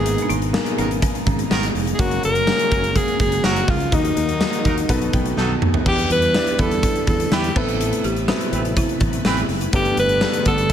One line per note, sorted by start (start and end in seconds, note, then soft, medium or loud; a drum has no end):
0.00 0.16 G#1 loud
0.00 0.50 G#2 medium
0.00 1.97 B2 medium
0.00 3.89 G#3 medium
0.00 0.39 A#3 medium
0.00 0.40 B3 medium
0.00 0.40 D#4 medium
0.00 1.95 D#4 medium
0.00 0.30 G#4 loud
0.00 0.40 G#4 medium
0.00 0.40 A#4 medium
0.00 1.95 A#4 medium
0.06 closed hi-hat medium
0.18 closed hi-hat medium
0.22 0.30 D4 medium
0.29 0.56 G#1 loud
0.29 0.75 D#4 loud
0.29 closed hi-hat medium
0.42 closed hi-hat soft
0.53 1.16 A#3 loud
0.53 1.17 B3 medium
0.53 1.17 D#4 medium
0.53 1.17 G#4 medium
0.53 1.17 A#4 loud
0.53 snare loud
0.53 tambourine medium
0.66 closed hi-hat medium
0.78 1.05 G#1 loud
0.78 0.88 D#3 medium
0.78 0.88 B3 medium
0.78 1.01 C#4 loud
0.78 0.88 A#4 loud
0.78 closed hi-hat medium
0.91 closed hi-hat medium
1.02 1.27 B3 medium
1.02 kick loud
1.02 closed hi-hat loud
1.15 closed hi-hat medium
1.26 1.44 G#1 loud
1.26 1.49 C#4 medium
1.26 kick loud
1.26 closed hi-hat medium
1.39 closed hi-hat medium
1.51 1.68 G#1 loud
1.51 1.66 D#3 loud
1.51 1.84 B3 medium
1.51 1.66 B3 loud
1.51 1.66 A#4 loud
1.51 snare loud
1.51 tambourine medium
1.63 closed hi-hat medium
1.75 1.92 F1 medium
1.75 open hi-hat medium
1.87 closed hi-hat medium
1.94 2.02 G#4 medium
1.98 2.16 F#1 loud
1.98 3.91 C#3 medium
1.98 2.30 A#3 medium
1.98 4.87 A#3 medium
1.98 2.30 C#4 medium
1.98 2.31 F#4 medium
1.98 5.82 F#4 medium
1.98 2.24 F#4 loud
1.98 2.31 G#4 medium
1.98 2.31 A#4 medium
1.98 kick loud
1.98 closed hi-hat medium
2.11 closed hi-hat medium
2.23 2.50 F#1 loud
2.23 2.98 A#4 loud
2.23 closed hi-hat medium
2.35 closed hi-hat medium
2.46 3.10 A#3 medium
2.46 3.10 C#4 medium
2.46 3.10 F#4 medium
2.46 3.10 G#4 medium
2.46 3.10 A#4 medium
2.46 snare loud
2.46 tambourine medium
2.59 closed hi-hat medium
2.71 2.98 F#1 loud
2.71 2.82 F#3 medium
2.71 2.82 C#4 medium
2.71 2.82 A#4 loud
2.71 kick medium
2.71 closed hi-hat medium
2.84 closed hi-hat medium
2.96 3.20 G#4 loud
2.96 kick loud
2.96 closed hi-hat loud
3.08 closed hi-hat medium
3.20 3.37 F#1 loud
3.20 3.47 G#4 loud
3.20 kick loud
3.20 closed hi-hat medium
3.32 closed hi-hat medium
3.44 3.62 F#1 medium
3.44 3.60 F#3 loud
3.44 3.60 C#4 loud
3.44 3.71 F#4 loud
3.44 3.60 A#4 loud
3.44 snare loud
3.44 tambourine medium
3.56 closed hi-hat medium
3.68 3.86 C#2 medium
3.68 3.96 F4 medium
3.68 kick medium
3.68 open hi-hat medium
3.80 closed hi-hat medium
3.92 4.10 D#2 loud
3.92 4.88 D#3 medium
3.92 4.61 D#3 medium
3.92 4.88 F#3 medium
3.92 4.24 A#3 medium
3.92 4.24 D#4 medium
3.92 5.38 D#4 loud
3.92 4.24 F#4 medium
3.92 4.24 A#4 medium
3.92 4.24 D#5 medium
3.92 kick loud
3.92 closed hi-hat loud
4.05 closed hi-hat medium
4.17 4.43 D#2 loud
4.17 closed hi-hat medium
4.29 closed hi-hat soft
4.40 4.89 A#3 medium
4.40 4.87 D#4 medium
4.40 4.88 F#4 medium
4.40 4.90 A#4 medium
4.40 4.90 D#5 medium
4.40 snare loud
4.40 tambourine medium
4.53 closed hi-hat medium
4.65 4.83 D#2 loud
4.65 4.75 F#3 medium
4.65 4.75 D#4 medium
4.65 4.75 A#4 loud
4.65 kick medium
4.65 closed hi-hat medium
4.78 closed hi-hat medium
4.89 5.07 B1 loud
4.89 5.58 B2 medium
4.89 5.85 D#3 medium
4.89 5.85 A3 medium
4.89 5.66 B3 loud
4.89 5.85 B3 medium
4.89 5.67 D#4 medium
4.89 5.67 F#4 medium
4.89 5.67 A4 medium
4.89 5.67 B4 loud
4.89 kick loud
4.89 closed hi-hat loud
5.02 closed hi-hat medium
5.13 5.31 B1 loud
5.13 5.36 G5 medium
5.13 kick loud
5.13 closed hi-hat medium
5.25 closed hi-hat medium
5.37 5.55 B1 loud
5.37 5.53 F#3 loud
5.37 5.53 D#4 loud
5.37 5.53 A4 loud
5.37 5.83 A5 medium
5.37 snare medium
5.62 5.79 D#2 medium
5.62 mid tom medium
5.74 floor tom loud
5.86 6.03 E2 loud
5.86 7.54 D3 medium
5.86 6.55 E3 medium
5.86 7.54 G3 medium
5.86 6.17 B3 medium
5.86 6.18 D4 medium
5.86 6.18 E4 medium
5.86 9.70 E4 medium
5.86 6.18 G4 medium
5.86 6.10 G4 loud
5.86 10.73 B4 medium
5.86 6.18 B4 medium
5.86 kick loud
5.86 crash loud
5.98 closed hi-hat medium
6.10 6.36 E2 loud
6.10 6.62 B4 loud
6.10 closed hi-hat medium
6.22 closed hi-hat medium
6.34 6.97 B3 medium
6.34 6.97 D4 medium
6.34 6.98 E4 medium
6.34 6.98 G4 medium
6.34 6.98 D5 medium
6.34 snare loud
6.34 tambourine medium
6.47 closed hi-hat medium
6.59 6.85 E2 loud
6.59 6.69 G3 medium
6.59 6.69 E4 medium
6.59 7.08 A4 loud
6.59 6.69 B4 loud
6.59 kick medium
6.59 closed hi-hat medium
6.71 closed hi-hat medium
6.83 kick loud
6.83 closed hi-hat loud
6.95 closed hi-hat medium
7.07 7.25 E2 loud
7.07 7.35 A4 loud
7.07 kick medium
7.07 closed hi-hat medium
7.20 closed hi-hat medium
7.32 7.49 E2 loud
7.32 7.47 G3 loud
7.32 7.47 E4 loud
7.32 7.59 G4 medium
7.32 7.47 B4 loud
7.32 snare loud
7.32 tambourine medium
7.44 closed hi-hat medium
7.56 7.91 A1 loud
7.56 8.24 A2 medium
7.56 9.71 C3 medium
7.56 10.73 A3 medium
7.56 8.14 B3 medium
7.56 8.14 C4 medium
7.56 8.14 E4 medium
7.56 8.14 A4 medium
7.56 8.05 A4 medium
7.56 8.14 B4 medium
7.56 kick loud
7.56 crash medium
7.68 closed hi-hat medium
7.81 closed hi-hat medium
7.93 closed hi-hat medium
8.04 8.30 A1 loud
8.04 8.27 G4 loud
8.04 closed hi-hat medium
8.16 closed hi-hat soft
8.28 8.91 B3 loud
8.28 8.91 C4 medium
8.28 8.91 E4 medium
8.28 8.78 F#4 loud
8.28 8.92 A4 medium
8.28 8.92 B4 loud
8.28 snare loud
8.28 tambourine medium
8.41 closed hi-hat medium
8.53 8.79 A1 loud
8.53 8.63 E3 medium
8.53 8.63 C4 medium
8.53 8.63 B4 loud
8.53 closed hi-hat medium
8.65 closed hi-hat medium
8.77 9.24 E4 medium
8.77 kick loud
8.77 closed hi-hat loud
8.89 closed hi-hat medium
9.00 9.18 A1 loud
9.00 kick loud
9.00 closed hi-hat medium
9.13 closed hi-hat medium
9.25 9.42 A1 loud
9.25 9.40 E3 loud
9.25 9.40 C4 loud
9.25 9.59 E4 medium
9.25 9.40 B4 loud
9.25 snare loud
9.25 tambourine medium
9.37 closed hi-hat medium
9.49 9.66 F#1 medium
9.49 open hi-hat medium
9.61 closed hi-hat medium
9.73 9.91 G1 loud
9.73 10.42 G2 medium
9.73 10.73 D3 medium
9.73 10.05 B3 medium
9.73 10.05 D4 medium
9.73 10.73 G4 medium
9.73 10.05 G4 medium
9.73 9.97 G4 loud
9.73 10.05 A4 medium
9.73 10.05 B4 medium
9.73 kick loud
9.73 closed hi-hat medium
9.85 closed hi-hat medium
9.97 10.23 G1 loud
9.97 10.43 B4 loud
9.97 closed hi-hat medium
10.09 closed hi-hat soft
10.21 10.73 B3 medium
10.21 10.73 D4 medium
10.21 10.73 G4 medium
10.21 10.73 A4 medium
10.21 10.73 B4 medium
10.21 snare loud
10.21 tambourine medium
10.33 closed hi-hat medium
10.45 10.72 G1 loud
10.45 10.56 D3 medium
10.45 10.56 B3 medium
10.45 10.56 A4 medium
10.45 10.73 A4 loud
10.45 kick medium
10.45 closed hi-hat medium
10.58 closed hi-hat medium
10.70 closed hi-hat loud